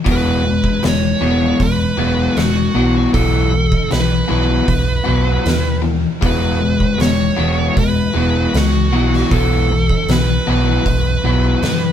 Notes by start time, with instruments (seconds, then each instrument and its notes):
0.05 picked electric bass E1, clean electric guitar E2 B2 F#3, overdriven electric guitar E3 G#3 B3, kick, open hi-hat
0.12 lead electric guitar B4
0.44 clean electric guitar E2 B2, overdriven electric guitar E3 G#3
0.64 kick
0.83 picked electric bass E1, clean electric guitar E2 B2, overdriven electric guitar E3 G#3, snare, open hi-hat
0.88 lead electric guitar C#5
1.21 picked electric bass E1, clean electric guitar E2 B2 F#3, overdriven electric guitar E3 G#3 B3
1.60 picked electric bass E1, clean electric guitar E2 B2, overdriven electric guitar E3 G#3, lead electric guitar B4, kick, open hi-hat
1.97 picked electric bass E1, clean electric guitar E2 B2 F#3, overdriven electric guitar E3 G#3 B3
2.36 picked electric bass E1, clean electric guitar E2 B2, overdriven electric guitar E3 G#3, lead electric guitar F#4, snare, open hi-hat
2.75 picked electric bass B1, clean electric guitar B2 E3 B3, overdriven electric guitar B2 E3 F#3
3.13 picked electric bass B1, clean electric guitar B2 E3 B3, overdriven electric guitar B2 E3 F#3, lead electric guitar A4, kick, open hi-hat
3.51 overdriven electric guitar B2 E3, clean electric guitar B2 E3
3.72 kick
3.90 picked electric bass B1, overdriven electric guitar B2 E3, clean electric guitar B2 E3, lead electric guitar B4, snare, open hi-hat
4.28 picked electric bass B1, overdriven electric guitar B2 E3 F#3, clean electric guitar B2 E3 B3, lead electric guitar B4
4.66 picked electric bass B1, overdriven electric guitar B2 E3, clean electric guitar B2 E3, kick, open hi-hat
5.04 picked electric bass B1, overdriven electric guitar B2 E3 F#3, clean electric guitar B2 E3 B3
5.44 picked electric bass D#2, overdriven electric guitar B2 E3, clean electric guitar B2 E3, snare, open hi-hat
5.82 overdriven electric guitar B2 E3, clean electric guitar B2 E3
6.21 picked electric bass E1, clean electric guitar E2 B2 E3, overdriven electric guitar E3 G#3 B3, kick, open hi-hat
6.26 lead electric guitar B4
6.61 clean electric guitar E2 B2, overdriven electric guitar E3 G#3
6.80 kick
6.98 picked electric bass E1, clean electric guitar E2 B2, overdriven electric guitar E3 G#3, lead electric guitar C#5, snare, open hi-hat
7.36 picked electric bass E1, clean electric guitar E2 B2 E3, overdriven electric guitar E3 G#3 B3
7.76 picked electric bass E1, clean electric guitar E2 B2, overdriven electric guitar E3 G#3, lead electric guitar B4, kick, open hi-hat
8.14 picked electric bass E1, clean electric guitar E2 B2 E3, overdriven electric guitar E3 G#3 B3
8.53 picked electric bass C#2, clean electric guitar E2, overdriven electric guitar E3 G#3, lead electric guitar F#4, snare, open hi-hat
8.92 picked electric bass B1, overdriven electric guitar B2 E3 F#3, clean electric guitar B2 E3 B3
9.13 snare
9.31 picked electric bass B1, overdriven electric guitar B2 E3 F#3, clean electric guitar B2 E3 B3, lead electric guitar A4, kick, open hi-hat
9.70 clean electric guitar B2 E3, overdriven electric guitar B2 E3
9.89 kick
10.08 picked electric bass B1, clean electric guitar B2 E3, overdriven electric guitar B2 E3, lead electric guitar B4, snare, open hi-hat
10.47 picked electric bass B1, overdriven electric guitar B2 E3 F#3, clean electric guitar B2 E3 B3, lead electric guitar B4
10.86 picked electric bass B1, clean electric guitar B2 E3, overdriven electric guitar B2 E3, kick, open hi-hat
11.24 picked electric bass B1, clean electric guitar B2 E3 B3, overdriven electric guitar B2 E3 F#3
11.62 picked electric bass F#2, overdriven electric guitar B2 E3, clean electric guitar B2 E3, snare, open hi-hat